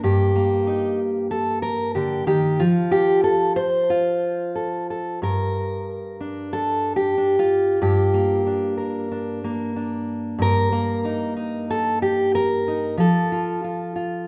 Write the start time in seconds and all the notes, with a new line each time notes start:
Already playing: A#3
0.03 G2 G4
0.36 A#3
0.67 D#4
1.31 A4
1.62 A#4
1.95 D3 G4
2.27 D#3 G4
2.59 F3 F4
2.91 G4
3.24 A4
3.56 C5
3.90 F4
4.55 A4
4.90 A4
5.22 G2 A#4
6.21 D4
6.53 A4
6.96 G4
7.18 D4
7.39 F4
7.82 G2 G4
8.14 A#3
8.47 D4
8.77 A#4
9.12 D4
9.44 A#3
9.76 D4
10.38 G2 A#4
10.72 A#3
11.05 D#4
11.37 D#4
11.70 A4
12.02 G4
12.35 A#4
12.68 D#4
12.97 F3 A4
13.32 F4
13.64 F4
13.96 F4